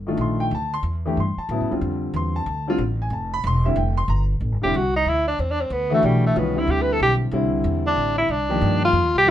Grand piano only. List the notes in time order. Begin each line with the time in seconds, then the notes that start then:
0.07 D#3 A3 D4 F4
0.21 C6
0.40 G5
0.55 A5
0.74 C6
1.06 E3 A3 D4 G4
1.20 C6
1.38 A5
1.50 C#3 F#3 B3 E4
1.70 D3 G3 C4 F4
2.16 C6
2.36 A5
2.67 D3 G3 C4 F4
3.02 G#5
3.13 A5
3.34 B5
3.47 C6
3.65 D3 G3 C4 E4 E5
3.77 G5
3.97 C6
4.10 A#5
4.62 D3 G3 C4 E4
5.90 E3 A3 D4 F#4
6.34 D#3 G#3 C#4 F4
6.55 D3 G3 C4 E4
7.32 D3 G3 C4 E4
8.49 D#3 F3 A#3 G4
9.26 D#3 A3 F4